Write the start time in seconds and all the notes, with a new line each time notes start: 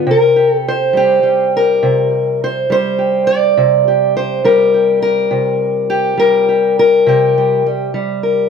Already playing: G4
0.07 C3
0.11 A#4
0.36 G4
0.52 A4
0.68 C5
0.93 G3 G4
1.23 G3
1.57 A#4
1.83 C3
2.44 C5
2.70 G3 C5
2.98 G4
3.27 D5
3.57 C3
3.88 G4
4.17 C5
4.44 G3 A#4
4.74 G4
5.02 A#4
5.31 C3
5.90 G4
6.17 G3 A#4
6.49 G4
6.79 A#4
7.06 C3 G4
7.38 G3
7.66 G3
7.94 G3
8.23 A#4